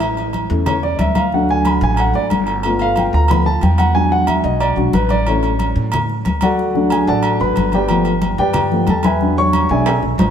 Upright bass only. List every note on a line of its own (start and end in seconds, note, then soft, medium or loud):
0.00 0.44 A1 medium
0.50 0.96 E2 loud
0.99 1.76 D2 loud
1.81 2.12 A1 loud
2.14 2.29 G#1 medium
2.31 3.07 G1 medium
3.13 3.59 D2 medium
3.62 4.39 E2 medium
4.44 4.75 B1 loud
4.76 4.92 B1 medium
4.93 5.70 A1 loud
5.76 6.22 A2 loud
6.25 7.02 D2 medium
7.07 7.38 A1 loud
7.40 7.55 G#1 medium
7.57 8.33 G1 medium
8.38 8.84 G2 loud
8.87 9.64 E2 medium
9.69 10.00 B1 loud
10.02 10.17 B1 medium
10.18 10.30 A1 medium